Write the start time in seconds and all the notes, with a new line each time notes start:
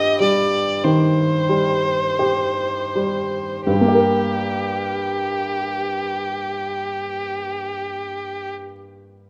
Already playing: G2 G3 G4 D#5
0.20 G3 D5
0.84 D#3 C5
1.49 G3
2.19 G4
2.96 G3
3.67 G2 G4
3.74 G3
3.81 A#3
3.88 G4
3.95 A#4